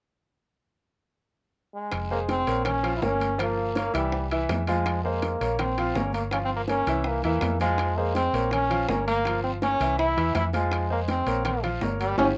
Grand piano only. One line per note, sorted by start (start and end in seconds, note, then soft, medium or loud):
2.10 2.41 G#3 medium
2.10 2.41 G#4 medium
2.10 2.41 C5 medium
2.47 2.77 A#3 medium
2.47 2.77 A#4 medium
2.47 2.77 C#5 medium
2.83 2.99 F3 medium
2.83 2.99 F4 medium
2.83 2.99 F5 medium
3.02 3.32 A#3 medium
3.02 3.32 A#4 medium
3.02 3.33 C#5 medium
3.38 3.69 F3 medium
3.38 3.69 F4 medium
3.38 3.69 F5 medium
3.75 3.90 A#3 medium
3.75 3.91 A#4 medium
3.75 3.91 C#5 medium
3.93 4.24 E3 medium
3.93 4.24 E4 medium
3.93 4.24 E5 medium
4.32 4.61 E3 medium
4.32 4.61 E4 medium
4.32 4.62 E5 medium
4.69 4.98 F3 medium
4.69 4.98 F4 medium
4.69 4.98 F5 medium
5.05 5.35 G#3 medium
5.05 5.35 G#4 medium
5.05 5.35 C5 medium
5.41 5.71 A#3 medium
5.41 5.71 A#4 medium
5.41 5.71 C#5 medium
5.78 5.93 F3 medium
5.78 5.93 F4 medium
5.78 5.93 F5 medium
5.95 6.26 A#3 medium
5.95 6.26 A#4 medium
5.95 6.26 C#5 medium
6.32 6.63 F3 medium
6.32 6.63 F4 medium
6.32 6.63 F5 medium
6.69 6.84 A#3 medium
6.69 6.85 A#4 medium
6.69 6.85 C#5 medium
6.88 7.18 E3 medium
6.88 7.18 E4 medium
6.88 7.18 E5 medium
7.25 7.54 E3 medium
7.25 7.55 E4 medium
7.25 7.55 E5 medium
7.61 7.91 F3 medium
7.61 7.91 F4 medium
7.61 7.91 F5 medium
7.97 8.27 G#3 medium
7.97 8.28 G#4 medium
7.97 8.28 C5 medium
8.34 8.64 A#3 medium
8.34 8.64 A#4 medium
8.34 8.65 C#5 medium
8.70 8.85 F3 medium
8.70 8.86 F4 medium
8.70 8.86 F5 medium
8.89 9.19 A#3 medium
8.89 9.19 A#4 medium
8.89 9.20 C#5 medium
9.25 9.56 F3 medium
9.25 9.56 F4 medium
9.25 9.56 F5 medium
9.62 9.77 A#3 medium
9.62 9.77 A#4 medium
9.62 9.77 C#5 medium
9.80 10.10 E3 medium
9.80 10.11 E4 medium
9.80 10.11 E5 medium
10.17 10.47 E3 medium
10.17 10.47 E4 medium
10.17 10.47 E5 medium
10.53 10.84 F3 medium
10.53 10.84 F4 medium
10.53 10.84 F5 medium
10.90 11.20 G#3 medium
10.90 11.20 G#4 medium
10.90 11.20 C5 medium
11.27 11.57 A#3 medium
11.27 11.57 A#4 medium
11.27 11.57 C#5 medium
11.63 11.78 F3 medium
11.63 11.79 F4 medium
11.63 11.79 F5 medium
11.82 12.12 A#3 medium
11.82 12.12 A#4 medium
11.82 12.12 C#5 medium
12.19 12.30 C#4 medium
12.19 12.30 F4 medium
12.19 12.30 G4 medium